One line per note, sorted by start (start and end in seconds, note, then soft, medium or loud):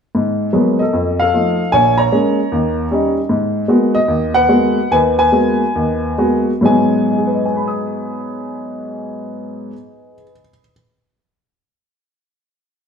0.15 0.49 G#2 medium
0.53 0.81 F#3 soft
0.53 0.81 G#3 soft
0.53 0.81 A#3 soft
0.53 0.81 B3 medium
0.79 1.20 A4 medium
0.79 1.20 D#5 medium
0.93 1.27 F2 medium
1.20 1.70 A4 medium
1.20 1.69 F5 medium
1.34 1.60 F3 medium
1.34 1.61 A3 soft
1.34 1.61 D#4 medium
1.72 2.07 A#1 medium
1.72 1.98 C#5 medium
1.72 1.96 G#5 loud
1.98 3.12 C#5 medium
1.98 3.12 A#5 medium
2.12 2.39 G#3 medium
2.12 2.39 A#3 soft
2.12 2.39 C#4 medium
2.52 2.85 D#2 medium
2.91 3.18 G3 medium
2.91 3.18 C#4 medium
2.91 3.19 D#4 medium
3.29 3.64 G#2 medium
3.68 3.96 G#3 medium
3.68 3.96 A#3 soft
3.68 3.96 B3 medium
3.68 3.96 F#4 medium
3.95 4.36 D#5 medium
4.08 4.43 D#2 medium
4.34 4.91 B4 medium
4.34 4.91 F#5 loud
4.49 4.77 G#3 medium
4.49 4.77 A#3 medium
4.49 4.77 B3 soft
4.49 4.77 F#4 medium
4.91 5.27 D#2 medium
4.91 5.17 B4 medium
4.91 4.98 G#5 medium
5.18 6.45 B4 medium
5.18 6.45 G#5 medium
5.32 5.61 G#3 soft
5.32 5.62 A#3 soft
5.32 5.62 B3 soft
5.32 5.62 F#4 medium
5.75 6.13 D#2 medium
6.18 6.50 G#3 soft
6.18 6.50 A#3 soft
6.18 6.50 B3 soft
6.18 6.50 F#4 medium
6.61 9.69 G#2 medium
6.61 9.71 F#3 medium
6.61 9.72 G#3 medium
6.61 9.73 B3 medium
6.66 7.44 G#5 medium
7.10 10.14 D#4 soft
7.18 10.22 G#4 soft
7.26 10.30 B4 soft
7.35 10.39 D#5 soft
7.46 10.50 G#5 soft
7.56 10.60 B5 soft
7.68 10.72 D#6 soft